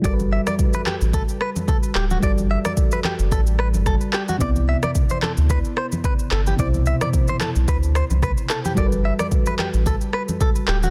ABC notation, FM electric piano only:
X:1
M:4/4
L:1/8
Q:"Swing 16ths" 1/4=110
K:G
V:1 name="FM electric piano"
[G,FA_B=B]8 | [G,FAd]8 | [C,B,Ed]8 | [B,,C,Ec]8 |
[G,FA_B=B]8 |]